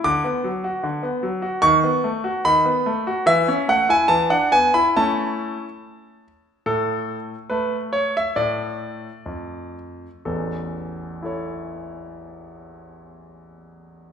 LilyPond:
<<
  \new Staff \with { instrumentName = "Grand piano" } { \time 2/4 \key a \major \tempo 4 = 70 << { d'''2 | cis'''4 b''4 | e''8 fis''16 gis''16 a''16 fis''16 gis''16 b''16 | a''4. r8 |
a'4 b'8 cis''16 e''16 | d''4. r8 | a'2~ | a'2 | } \\ { r2 | r2 | r2 | r2 |
a2 | a2 | r4 <e' a' cis''>4~ | <e' a' cis''>2 | } >> }
  \new Staff \with { instrumentName = "Grand piano" } { \time 2/4 \key a \major d16 b16 fis16 fis'16 d16 b16 fis16 fis'16 | dis16 b16 a16 fis'16 dis16 b16 a16 fis'16 | e16 cis'16 a16 e'16 e16 d'16 b16 e'16 | <a cis' e'>4 r4 |
a,4 a4 | a,4 f,4 | <a,, e,>2~ | <a,, e,>2 | }
>>